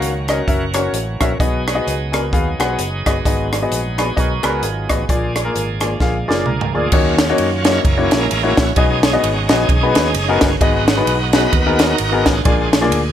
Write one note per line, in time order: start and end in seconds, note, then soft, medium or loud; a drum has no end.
0.00 0.40 C#2 medium
0.00 0.26 D#3 medium
0.00 0.46 D#3 medium
0.00 1.38 F#3 medium
0.00 1.38 A#3 medium
0.00 0.10 C#4 medium
0.00 1.38 C#4 medium
0.00 0.11 F#4 medium
0.00 1.38 F#4 medium
0.00 0.10 A#4 medium
0.00 0.10 F5 medium
0.00 closed hi-hat medium
0.28 0.39 C#4 medium
0.28 0.39 F#4 medium
0.28 0.39 A#4 medium
0.28 0.39 D#5 medium
0.28 cross-stick medium
0.28 closed hi-hat medium
0.47 0.87 F#1 medium
0.47 1.39 E3 medium
0.47 0.62 C#4 medium
0.47 0.62 F#4 medium
0.47 0.62 A#4 medium
0.47 0.62 E5 medium
0.47 kick medium
0.47 closed hi-hat medium
0.74 0.95 C#4 medium
0.74 0.95 F#4 medium
0.74 0.95 A#4 medium
0.74 0.95 C#5 medium
0.74 cross-stick loud
0.74 closed hi-hat medium
0.93 1.16 A1 medium
0.93 closed hi-hat medium
1.20 1.37 A#1 medium
1.20 1.31 C#4 medium
1.20 1.31 F#4 medium
1.20 1.31 A#4 medium
1.20 1.31 E5 medium
1.20 kick medium
1.20 cross-stick loud
1.20 closed hi-hat medium
1.39 1.79 B1 medium
1.39 2.09 B2 medium
1.39 5.05 F#3 medium
1.39 5.05 G#3 medium
1.39 5.05 B3 medium
1.39 1.61 B3 medium
1.39 5.05 D#4 medium
1.39 1.61 F#4 medium
1.39 6.89 G#4 medium
1.39 1.61 G#4 medium
1.39 1.61 D#5 medium
1.39 kick loud
1.39 closed hi-hat medium
1.68 cross-stick medium
1.68 closed hi-hat medium
1.75 1.93 B3 medium
1.75 1.93 F#4 medium
1.75 1.93 G#4 medium
1.75 1.93 D#5 medium
1.87 2.33 C#2 medium
1.87 closed hi-hat medium
2.12 2.23 B3 medium
2.12 2.23 F#4 medium
2.12 2.23 G#4 medium
2.12 2.23 A#4 medium
2.12 cross-stick medium
2.12 closed hi-hat medium
2.33 2.56 D#2 medium
2.33 2.46 B3 medium
2.33 2.47 F#4 medium
2.33 2.47 G#4 medium
2.33 2.47 F5 medium
2.33 kick medium
2.33 closed hi-hat medium
2.59 2.75 B1 medium
2.59 2.80 B3 medium
2.59 2.80 F#4 medium
2.59 2.80 G#4 medium
2.59 2.80 F#5 loud
2.59 cross-stick loud
2.59 closed hi-hat medium
2.79 3.01 F#1 medium
2.79 closed hi-hat medium
3.06 3.22 G1 medium
3.06 3.16 B3 medium
3.06 3.16 F#4 medium
3.06 3.16 G#4 medium
3.06 3.16 D#5 medium
3.06 kick medium
3.06 cross-stick medium
3.06 closed hi-hat medium
3.25 3.64 G#1 medium
3.25 3.94 G#2 medium
3.25 3.46 B3 medium
3.25 3.46 F#4 medium
3.25 3.46 G#4 medium
3.25 3.46 D#5 medium
3.25 kick medium
3.25 closed hi-hat medium
3.53 cross-stick medium
3.53 closed hi-hat medium
3.62 3.79 B3 medium
3.62 3.79 F#4 medium
3.62 3.79 G#4 medium
3.62 3.79 D#5 medium
3.71 4.10 A#1 medium
3.71 closed hi-hat medium
3.98 4.08 B3 medium
3.98 4.08 F#4 medium
3.98 4.08 G#4 medium
3.98 4.08 B4 medium
3.98 cross-stick medium
3.98 closed hi-hat medium
4.16 4.40 B1 medium
4.16 4.31 B3 medium
4.16 4.31 F#4 medium
4.16 4.31 G#4 medium
4.16 4.43 A#4 medium
4.16 4.43 C#5 medium
4.16 4.31 D#5 medium
4.16 kick medium
4.16 closed hi-hat medium
4.43 4.60 C#2 medium
4.43 4.64 B3 medium
4.43 4.63 F#4 medium
4.43 4.64 G#4 medium
4.43 4.63 G#4 medium
4.43 4.64 A#4 medium
4.43 4.63 B4 medium
4.43 cross-stick loud
4.43 closed hi-hat medium
4.62 4.85 G#1 medium
4.62 5.08 F4 medium
4.62 5.07 G#4 medium
4.62 closed hi-hat medium
4.89 5.06 A1 medium
4.89 5.00 B3 medium
4.89 4.99 F#4 medium
4.89 4.99 G#4 medium
4.89 5.00 D#5 medium
4.89 kick medium
4.89 cross-stick medium
4.89 closed hi-hat medium
5.09 5.48 A#1 medium
5.09 5.78 A#2 medium
5.09 6.91 F3 medium
5.09 6.91 G#3 medium
5.09 6.91 A#3 medium
5.09 5.30 A#3 medium
5.09 6.92 D4 medium
5.09 5.31 F4 medium
5.09 5.30 G#4 medium
5.09 5.30 D5 medium
5.09 kick loud
5.09 closed hi-hat medium
5.36 cross-stick medium
5.36 closed hi-hat medium
5.45 5.62 A#3 medium
5.45 5.62 F4 medium
5.45 5.62 G#4 medium
5.45 5.62 A#4 medium
5.55 5.94 G#1 medium
5.55 closed hi-hat medium
5.80 5.91 A#3 medium
5.80 5.91 F4 medium
5.80 5.91 G#4 medium
5.80 5.91 D5 medium
5.80 cross-stick loud
5.80 closed hi-hat medium
6.00 6.23 A#1 medium
6.00 6.15 A#3 medium
6.00 6.15 F4 medium
6.00 6.15 G#4 medium
6.00 6.15 F5 medium
6.00 kick medium
6.00 snare soft
6.28 6.45 F#1 medium
6.28 6.48 A#3 medium
6.28 6.48 F4 medium
6.28 6.48 G#4 medium
6.28 6.45 A#4 medium
6.28 6.46 D5 medium
6.28 6.48 D5 medium
6.28 snare medium
6.46 6.70 C#2 medium
6.46 6.72 A#4 medium
6.46 mid tom medium
6.61 floor tom medium
6.74 6.90 D2 medium
6.74 6.84 A#3 medium
6.74 6.84 F4 medium
6.74 7.19 F4 medium
6.74 6.84 G#4 medium
6.74 7.18 G#4 medium
6.74 6.84 D5 medium
6.92 7.31 D#2 loud
6.92 7.62 D#3 medium
6.92 7.81 F#3 medium
6.92 7.14 A#3 medium
6.92 7.14 C#4 medium
6.92 7.81 C#4 medium
6.92 7.14 D#4 medium
6.92 7.81 F4 medium
6.92 7.14 F#4 medium
6.92 7.14 C#5 loud
6.92 kick loud
6.92 crash loud
7.19 snare loud
7.19 ride medium
7.29 7.47 A#3 medium
7.29 7.47 C#4 medium
7.29 7.47 D#4 medium
7.29 7.46 F#4 medium
7.29 7.47 C#5 medium
7.38 7.78 F#2 medium
7.38 ride medium
7.65 7.80 A#3 medium
7.65 7.80 C#4 medium
7.65 7.80 D#4 medium
7.65 7.85 E4 medium
7.65 7.80 F#4 medium
7.65 8.20 A#4 medium
7.65 7.80 C#5 medium
7.65 8.23 C#5 loud
7.65 snare loud
7.65 ride medium
7.84 8.07 F#1 loud
7.84 8.54 G#3 medium
7.84 8.54 A#3 medium
7.84 8.21 E4 medium
7.84 kick loud
7.84 ride medium
7.97 8.22 A#3 medium
7.97 8.22 C#4 medium
7.97 8.22 E4 medium
7.97 8.22 F#4 medium
7.97 8.22 C#5 medium
8.11 8.28 A#1 medium
8.11 snare loud
8.11 ride medium
8.21 8.73 C#4 medium
8.21 8.73 E4 medium
8.21 8.59 A#4 loud
8.31 8.54 A1 loud
8.31 ride medium
8.43 8.63 A#3 medium
8.43 8.63 C#4 medium
8.43 8.63 E4 medium
8.43 8.63 F#4 medium
8.43 8.63 C#5 medium
8.57 8.74 A#1 loud
8.57 8.77 F#4 medium
8.57 kick medium
8.57 snare loud
8.57 ride medium
8.76 9.16 B1 loud
8.76 9.46 B2 medium
8.76 10.57 G#3 medium
8.76 8.98 B3 medium
8.76 10.57 C#4 medium
8.76 9.51 D#4 medium
8.76 8.98 D#4 medium
8.76 8.98 F#4 medium
8.76 9.03 G#4 loud
8.76 8.98 G#4 medium
8.76 8.98 D#5 medium
8.76 kick loud
8.76 ride medium
9.03 9.13 G#4 loud
9.03 snare loud
9.03 ride medium
9.13 9.30 B3 medium
9.13 9.30 D#4 medium
9.13 9.30 F#4 medium
9.13 9.31 G#4 medium
9.13 9.31 D#5 medium
9.23 9.46 G#1 medium
9.23 9.51 F#4 medium
9.23 ride medium
9.49 9.66 A#1 medium
9.49 9.64 B3 medium
9.49 9.65 D#4 medium
9.49 10.39 D#4 medium
9.49 9.65 F#4 medium
9.49 9.65 G#4 medium
9.49 10.39 G#4 loud
9.49 9.65 D#5 medium
9.49 snare loud
9.49 ride medium
9.69 9.92 B1 loud
9.69 kick loud
9.69 ride medium
9.83 10.06 B3 medium
9.83 10.06 D#4 medium
9.83 10.07 F#4 medium
9.83 10.07 G#4 medium
9.83 10.06 B4 medium
9.95 10.12 D#2 medium
9.95 snare loud
9.95 ride medium
10.14 10.37 F#1 loud
10.14 ride medium
10.28 10.48 B3 medium
10.28 10.47 D#4 medium
10.28 10.48 F#4 medium
10.28 10.48 G#4 medium
10.28 10.48 A#4 loud
10.41 10.58 G1 medium
10.41 kick medium
10.41 snare loud
10.41 ride medium
10.60 11.00 G#1 loud
10.60 11.30 G#2 medium
10.60 10.82 B3 medium
10.60 11.34 B3 medium
10.60 10.82 D#4 medium
10.60 11.34 D#4 medium
10.60 10.82 F#4 medium
10.60 11.34 F#4 loud
10.60 10.82 G#4 medium
10.60 10.82 D#5 medium
10.60 kick loud
10.60 ride medium
10.88 snare loud
10.88 ride medium
10.97 11.14 B3 medium
10.97 11.14 D#4 medium
10.97 11.14 F#4 medium
10.97 11.15 G#4 medium
10.97 11.15 B4 medium
11.06 11.46 B1 loud
11.06 ride medium
11.33 11.49 B3 medium
11.33 11.97 B3 medium
11.33 11.49 D#4 medium
11.33 11.81 D#4 medium
11.33 11.49 F#4 medium
11.33 11.81 F#4 medium
11.33 11.49 G#4 medium
11.33 11.80 A#4 medium
11.33 11.49 B4 medium
11.33 11.72 B4 loud
11.33 snare loud
11.33 ride medium
11.53 11.92 D#2 loud
11.53 kick loud
11.53 ride medium
11.66 11.90 B3 medium
11.66 11.91 D#4 medium
11.66 11.91 F#4 medium
11.66 11.91 G#4 medium
11.66 11.90 A#4 medium
11.73 11.81 B4 medium
11.79 12.42 D#4 medium
11.79 12.42 F#4 medium
11.79 12.29 A#4 loud
11.79 snare loud
11.79 ride medium
11.98 12.22 G#1 medium
11.98 ride medium
12.12 12.31 B3 medium
12.12 12.32 D#4 medium
12.12 12.32 F#4 medium
12.12 12.32 G#4 medium
12.12 12.32 A#4 medium
12.26 12.43 A1 medium
12.26 12.45 D4 medium
12.26 12.46 F4 medium
12.26 13.12 G#4 medium
12.26 kick medium
12.26 snare loud
12.26 ride medium
12.45 12.91 A#1 medium
12.45 13.12 A#2 medium
12.45 12.78 G#3 medium
12.45 12.67 A#3 medium
12.45 12.67 D4 medium
12.45 12.79 D4 medium
12.45 12.67 F4 medium
12.45 12.79 F4 medium
12.45 12.67 G#4 medium
12.45 12.67 D5 medium
12.45 kick loud
12.45 ride medium
12.73 snare loud
12.73 ride medium
12.81 12.99 A#3 loud
12.81 12.99 D4 medium
12.81 12.99 F4 medium
12.81 12.99 G#4 medium
12.81 12.99 D5 loud
12.91 13.12 D2 medium
12.91 ride medium